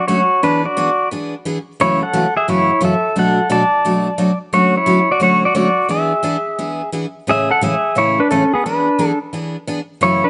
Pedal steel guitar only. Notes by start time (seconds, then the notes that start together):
0.08 F#4 C#5
0.43 D4 B4
0.65 F#4 D5
1.81 E4 C#5
2.02 A4 F#5
2.37 G#4 E5
2.49 E4 C#5
2.85 A4 E5
3.19 A4 F#5
3.52 D5 A5
4.54 F#4 C#5
4.77 E4 C#5
5.12 F#4 D5
5.23 F#4 C#5
5.45 F#4 D5
5.56 D5
5.91 G#4 E5
7.29 G#4 E5
7.51 A4 F#5
7.64 G#4 E5
7.98 E4 C#5
8.20 D4 B4
8.31 C#4 A4
8.54 B3 G#4
8.66 D4 B4
9.08 A4
10.03 E4 C#5
10.24 D4 B4